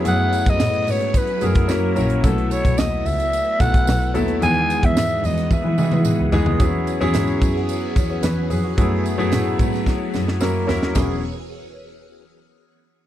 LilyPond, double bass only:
\new Staff \with { instrumentName = "Double bass" } { \clef bass \time 4/4 \key e \major \tempo 4 = 110 fis,8 r16 fis,16 a,8 gis,8 r8 fis,8 fis,8 ais,,8 | b,,8 r16 b,,16 dis,8 cis,8 r8 b,,8 b,,8 dis,8 | e,8 r16 e,16 gis,8 e,8 r16 e16 r16 e16 r16 cis,16 d,16 dis,16 | e,8 r16 e,16 gis,8 fis,8 r8 e,8 e,8 f,8 |
fis,8 r16 fis,16 a,8 gis,8 r8 fis,8 fis,8 dis,8 | e,,8 r2. r8 | }